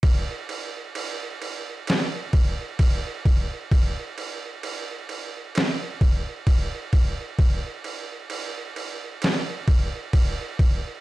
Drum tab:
CC |xxxxxxxx|xxxxxxxx|xxxxxxxx|
SD |----o---|----o---|----o---|
BD |o----ooo|o----ooo|o----ooo|